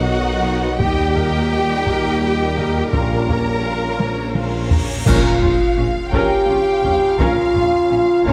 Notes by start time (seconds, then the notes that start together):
Already playing: B1 D#3 F#3 B3 D#4 F#4 F#5
0.08 D#4 F#4 D#5 F#5
0.44 B3 D#4 D#5 F#5
0.78 D#2 A#2 G3 A#3 D#4 G4 D#5 G5, taiko
1.16 A#3 A#4 D#5 G5, taiko low
1.51 G3 G4 D#5 G5
1.86 D#2 A#3 A#4 D#5 G5, taiko
2.22 G3 G4 D#5 G5
2.57 A#3 A#4 D#5 G5, taiko low
2.92 A#1 C#4 F4 A#4 F5 A#5, taiko, cymbal swell
3.28 A#3 C#4 C#5 A#5, taiko low
3.63 C#4 F4 A#4 F5
3.99 A#1 F3 A#3 C#4 C#5 A#5, taiko high
4.35 C#4 F4 A#4 F5, taiko high
4.69 A#3 C#4 C#5 A#5, taiko low
5.05 A#1 A#2 C#3 C#4 F4 A#4 F5, concert bass drum, taiko, crash, impact
5.42 A#1 A#2 C#4 F4, taiko low
5.77 A#1 A#2 C#4
6.12 A#1 A#2 C#4 G4 A#4 G5, taiko
6.47 A#1 A#2 C#4 F4
6.83 A#1 A#2 C#4, taiko low
7.19 A#1 A#2 C#4 F4 A#4 F5, taiko
7.54 A#1 A#2 C#4 F4, taiko low
7.89 A#1 A#2 C#4
8.25 A#1 A#2 C#4 A#4 C#5, taiko